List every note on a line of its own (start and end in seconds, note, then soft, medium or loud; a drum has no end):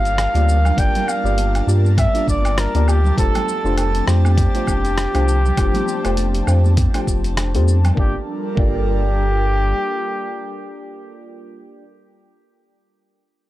0.00 0.27 G1 medium
0.00 3.14 G3 medium
0.00 0.30 A#3 medium
0.00 0.31 D4 medium
0.00 7.94 D4 medium
0.00 0.31 F4 medium
0.00 3.14 F4 medium
0.00 0.31 G4 medium
0.00 3.14 A#4 loud
0.00 0.31 D5 medium
0.00 0.80 F5 loud
0.00 7.94 A5 medium
0.05 closed hi-hat soft
0.05 shaker soft
0.18 cross-stick medium
0.18 closed hi-hat medium
0.18 low woodblock medium
0.18 shaker soft
0.34 0.72 D2 medium
0.34 0.57 A#3 medium
0.34 0.58 D4 medium
0.34 0.58 F4 medium
0.34 0.58 G4 medium
0.34 0.58 D5 medium
0.34 closed hi-hat soft
0.34 high bongo medium
0.34 high conga medium
0.34 shaker soft
0.49 shaker medium
0.65 low conga medium
0.65 low woodblock medium
0.65 shaker soft
0.77 0.90 G1 medium
0.77 1.20 A#3 medium
0.77 1.20 D4 medium
0.77 1.21 F4 medium
0.77 1.21 G4 medium
0.77 1.21 D5 medium
0.77 1.10 G5 loud
0.77 kick loud
0.77 closed hi-hat medium
0.77 shaker soft
0.95 closed hi-hat soft
0.95 high conga medium
0.95 low conga medium
0.95 shaker soft
1.08 1.68 F5 loud
1.08 low woodblock medium
1.08 shaker medium
1.24 1.62 G1 loud
1.24 1.64 A#3 medium
1.24 1.64 D4 medium
1.24 1.65 F4 medium
1.24 1.65 G4 medium
1.24 1.65 D5 loud
1.24 shaker soft
1.37 closed hi-hat medium
1.37 high conga medium
1.37 shaker soft
1.55 closed hi-hat soft
1.55 low woodblock medium
1.55 shaker soft
1.67 2.07 G2 loud
1.67 2.10 A#3 medium
1.67 2.10 D4 medium
1.67 2.11 F4 medium
1.67 2.11 G4 medium
1.67 2.11 D5 medium
1.67 shaker medium
1.85 high conga medium
1.85 shaker soft
1.98 2.26 E5 loud
1.98 kick loud
1.98 closed hi-hat medium
1.98 low woodblock medium
1.98 shaker soft
2.14 2.70 A#3 medium
2.14 2.70 D4 medium
2.14 2.71 F4 medium
2.14 2.71 G4 medium
2.14 2.71 D5 medium
2.14 closed hi-hat soft
2.14 high bongo soft
2.14 shaker soft
2.28 2.67 G1 medium
2.28 2.60 D5 loud
2.28 kick medium
2.28 high conga medium
2.28 shaker medium
2.45 closed hi-hat soft
2.45 low woodblock medium
2.45 shaker soft
2.58 2.90 A#4 loud
2.58 cross-stick medium
2.58 closed hi-hat medium
2.58 shaker soft
2.74 3.12 D2 loud
2.74 2.98 A#3 medium
2.74 2.98 D4 medium
2.74 2.98 F4 medium
2.74 2.98 G4 medium
2.74 2.98 D5 loud
2.74 closed hi-hat soft
2.74 high conga medium
2.74 shaker soft
2.88 3.18 G4 loud
2.88 low woodblock medium
2.88 shaker medium
3.04 low conga medium
3.04 shaker soft
3.17 3.30 F1 medium
3.17 7.93 F3 medium
3.17 3.60 A3 medium
3.17 7.93 C4 medium
3.17 3.61 D4 medium
3.17 3.61 F4 medium
3.17 7.94 G4 medium
3.17 3.61 G4 medium
3.17 3.74 A4 loud
3.17 3.61 C5 medium
3.17 kick loud
3.17 closed hi-hat medium
3.17 shaker soft
3.35 closed hi-hat soft
3.35 high conga medium
3.35 low conga medium
3.35 low woodblock medium
3.35 shaker soft
3.49 shaker medium
3.64 4.02 F1 loud
3.64 4.04 A3 medium
3.64 4.04 D4 medium
3.64 4.05 F4 medium
3.64 4.05 G4 medium
3.64 4.05 C5 loud
3.64 shaker soft
3.78 4.06 A4 loud
3.78 closed hi-hat medium
3.78 high conga medium
3.78 low woodblock medium
3.78 shaker soft
3.95 closed hi-hat soft
3.95 shaker soft
4.07 4.47 F2 loud
4.07 4.50 A3 medium
4.07 4.50 D4 medium
4.07 4.51 F4 medium
4.07 4.51 G4 medium
4.07 7.34 G4 loud
4.07 4.51 C5 medium
4.07 cross-stick medium
4.07 shaker medium
4.25 high conga medium
4.25 low woodblock medium
4.25 shaker soft
4.38 kick loud
4.38 closed hi-hat medium
4.38 shaker soft
4.54 5.10 A3 medium
4.54 5.11 D4 medium
4.54 5.11 F4 medium
4.54 5.11 G4 medium
4.54 5.11 C5 medium
4.54 closed hi-hat soft
4.54 high bongo soft
4.54 shaker soft
4.67 5.07 F1 medium
4.67 kick medium
4.67 high bongo medium
4.67 high conga medium
4.67 low woodblock medium
4.67 shaker medium
4.85 closed hi-hat soft
4.85 shaker soft
4.98 cross-stick medium
4.98 closed hi-hat medium
4.98 shaker soft
5.14 5.52 C2 medium
5.14 5.38 A3 medium
5.14 5.38 D4 medium
5.14 5.38 F4 medium
5.14 5.38 G4 medium
5.14 5.38 C5 loud
5.14 closed hi-hat soft
5.14 high bongo medium
5.14 high conga medium
5.14 low woodblock medium
5.14 shaker soft
5.28 shaker medium
5.45 low conga medium
5.45 shaker soft
5.56 5.70 F1 loud
5.56 6.00 A3 medium
5.56 6.00 D4 medium
5.56 6.00 F4 medium
5.56 6.01 G4 medium
5.56 6.01 C5 medium
5.56 kick loud
5.56 closed hi-hat medium
5.56 low woodblock medium
5.56 shaker soft
5.74 closed hi-hat soft
5.74 high conga loud
5.74 low conga medium
5.74 shaker soft
5.87 high bongo soft
5.87 shaker medium
6.04 6.42 F1 loud
6.04 6.44 A3 loud
6.04 6.44 D4 medium
6.04 6.45 F4 medium
6.04 6.45 G4 medium
6.04 6.45 C5 loud
6.04 closed hi-hat soft
6.04 low woodblock medium
6.04 shaker soft
6.16 closed hi-hat medium
6.16 high conga medium
6.16 shaker soft
6.35 closed hi-hat soft
6.35 shaker soft
6.47 6.87 F2 loud
6.47 6.90 A3 medium
6.47 6.90 D4 medium
6.47 6.90 F4 medium
6.47 6.91 G4 medium
6.47 6.91 C5 medium
6.47 low woodblock medium
6.47 shaker medium
6.64 high conga loud
6.64 shaker soft
6.77 kick loud
6.77 closed hi-hat medium
6.77 shaker soft
6.94 7.50 A3 medium
6.94 7.50 D4 medium
6.94 7.51 F4 medium
6.94 7.51 G4 medium
6.94 7.51 C5 medium
6.94 closed hi-hat soft
6.94 high bongo soft
6.94 low woodblock medium
6.94 shaker soft
7.07 7.56 F1 medium
7.07 kick medium
7.07 high conga medium
7.07 shaker medium
7.24 closed hi-hat soft
7.24 shaker soft
7.37 cross-stick medium
7.37 closed hi-hat medium
7.37 low woodblock medium
7.37 shaker soft
7.54 7.92 F2 loud
7.54 7.78 A3 medium
7.54 7.78 D4 medium
7.54 7.78 F4 medium
7.54 7.78 G4 medium
7.54 7.78 C5 loud
7.54 closed hi-hat soft
7.54 high conga medium
7.54 shaker soft
7.68 shaker medium
7.84 closed hi-hat soft
7.84 low conga loud
7.84 low woodblock medium
7.84 shaker soft
7.95 8.16 G1 medium
7.95 11.13 G3 medium
7.95 8.15 A#3 medium
7.95 8.15 D4 medium
7.95 11.13 D4 medium
7.95 11.13 F4 medium
7.95 8.16 F4 medium
7.95 8.16 G4 medium
7.95 11.13 A4 medium
7.95 11.13 A#4 loud
7.95 kick loud
7.99 8.17 G4 medium
7.99 8.17 D5 medium
8.55 9.73 G1 medium
8.55 11.82 A#3 medium
8.55 11.83 D4 medium
8.55 11.83 F4 medium
8.55 11.14 G4 loud
8.55 11.84 G4 medium
8.55 kick loud
8.60 11.85 D5 loud